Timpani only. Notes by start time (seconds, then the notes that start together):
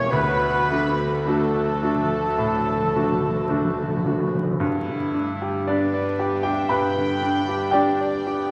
0.51 D3
0.75 D3
0.83 D3
0.92 D3
1.00 D3
1.24 D3
1.33 D3
1.41 D3
1.49 D3
1.56 D3
1.79 D3
1.89 D3
1.95 D3
2.03 D3
2.10 D3
2.18 D3
2.34 D3
2.42 D3
2.50 D3
2.58 D3
2.66 D3
2.74 D3
2.82 D3
2.89 D3
2.96 D3
3.03 D3
3.11 D3
3.19 D3
3.27 D3
3.34 D3
3.41 D3
3.49 D3
3.56 D3
3.64 D3
3.73 D3
3.80 D3
3.88 D3
3.96 D3
4.04 D3
4.12 D3
4.19 D3
4.28 D3
4.35 D3
4.43 D3
4.50 D3
4.60 G2